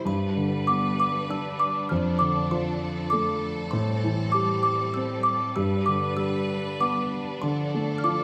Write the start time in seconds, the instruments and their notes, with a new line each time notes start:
0.05 felt piano G2, string section G3 D4 B4, music box B5
0.37 felt piano D3
0.67 felt piano B3, music box D6
1.00 music box D6
1.30 felt piano D4, music box E6
1.59 music box D6
1.89 felt piano F2, string section F3 A4, music box F6
2.19 felt piano D3, music box D6
2.51 felt piano F3, music box C6
3.10 felt piano A3, music box D6
3.71 felt piano A2, string section G3 C4, music box C6
4.04 felt piano E3
4.32 felt piano G3, music box D6
4.63 music box D6
4.94 felt piano C4, music box E6
5.23 music box D6
5.56 felt piano G2, string section D4 B4, music box E6
5.86 felt piano D3, music box D6
6.17 felt piano G3, music box E6
6.80 felt piano B3, music box D6
7.42 felt piano D3, music box C6
7.46 string section F3 A4
7.75 felt piano A3
7.98 music box F6
8.04 felt piano F4, music box D6